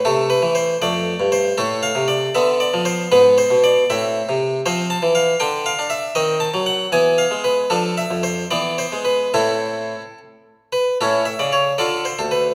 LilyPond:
<<
  \new Staff \with { instrumentName = "Harpsichord" } { \time 6/8 \key a \minor \tempo 4. = 78 a'8 b'8 c''8 d''4 c''8 | a'8 f''8 d''8 e''8 d''8 c''8 | b'8 c''8 d''8 e''4 r8 | c''8 a''8 f''8 g''8 f''8 e''8 |
dis''8 a''8 fis''8 gis''8 f''8 b'8 | a'8 e''8 c''8 d''8 c''8 b'8 | a'4. r4 b'8 | <cis' e' a'>8 e''16 d''16 cis''8 <f' a' d''>8 c''16 a'16 b'8 | }
  \new Staff \with { instrumentName = "Harpsichord" } { \clef bass \time 6/8 \key a \minor << { a4. a4. | a4. b4. | b4. c'4. | c'4. d'4. |
bis4. b4. | d'4. b4. | r2. | r2. | } \\ { c8. e8. f,8. g,8. | a,8. c8. d8. f8. | gis,8. b,8. a,8. c8. | f8. e8. d8. d'8. |
dis8. fis8. e8. gis8. | f8. f,8. e8. gis8. | <a, c' e'>4. r4. | a,8. cis8. d8. d,8. | } >> }
>>